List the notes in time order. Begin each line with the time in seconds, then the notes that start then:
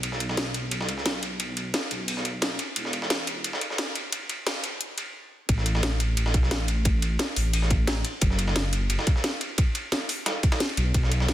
0.03 B1, closed hi-hat, ride
0.12 snare
0.20 closed hi-hat, ride
0.29 snare
0.37 snare, closed hi-hat, ride
0.54 closed hi-hat, ride
0.71 closed hi-hat, ride
0.81 snare
0.89 C#2, closed hi-hat, ride
0.98 snare
1.06 B1, snare, closed hi-hat, ride
1.23 closed hi-hat, ride
1.40 closed hi-hat, ride
1.57 closed hi-hat, ride
1.74 snare, closed hi-hat, ride
1.91 B1, closed hi-hat, ride
2.08 closed hi-hat, open hi-hat
2.17 snare
2.25 closed hi-hat, ride
2.42 snare, closed hi-hat, ride
2.59 closed hi-hat, ride
2.76 E1, closed hi-hat, ride
2.85 snare
2.93 closed hi-hat, ride
3.02 snare
3.10 snare, closed hi-hat, ride
3.27 closed hi-hat, ride
3.44 closed hi-hat, ride
3.53 snare
3.61 closed hi-hat, ride
3.70 snare
3.78 snare, closed hi-hat, ride
3.95 closed hi-hat, ride
4.12 closed hi-hat, ride
4.30 closed hi-hat, ride
4.47 snare, closed hi-hat, ride
4.64 closed hi-hat, ride
4.81 closed hi-hat
4.98 closed hi-hat, ride
5.49 A1, kick, closed hi-hat, ride
5.58 snare
5.66 closed hi-hat, ride
5.75 snare
5.83 snare, closed hi-hat, ride
6.00 closed hi-hat, ride
6.17 closed hi-hat, ride
6.26 snare
6.34 B1, kick, closed hi-hat, ride
6.43 snare
6.51 A1, snare, closed hi-hat, ride
6.68 closed hi-hat, ride
6.85 kick, closed hi-hat, ride
7.02 closed hi-hat, ride
7.19 snare, closed hi-hat, ride
7.36 A1, open hi-hat, ride
7.53 closed hi-hat, open hi-hat
7.62 snare
7.70 kick, closed hi-hat, ride
7.87 snare, closed hi-hat, ride
8.05 closed hi-hat, ride
8.21 F#1, kick, closed hi-hat, ride
8.30 snare
8.39 closed hi-hat, ride
8.48 snare
8.56 snare, closed hi-hat, ride
8.73 closed hi-hat, ride
8.90 closed hi-hat, ride
8.99 snare
9.07 kick, closed hi-hat, ride
9.16 snare
9.24 snare, closed hi-hat, ride
9.41 closed hi-hat, ride
9.58 kick, closed hi-hat, ride
9.75 closed hi-hat, ride
9.92 snare, closed hi-hat, ride
10.09 open hi-hat, ride
10.26 snare, closed hi-hat, ride
10.43 kick, closed hi-hat, ride
10.52 snare, ride
10.60 snare, closed hi-hat
10.69 ride
10.77 B1, closed hi-hat, ride
10.94 B1, kick, closed hi-hat, ride
11.03 snare
11.11 closed hi-hat, ride
11.20 snare
11.28 snare, closed hi-hat, ride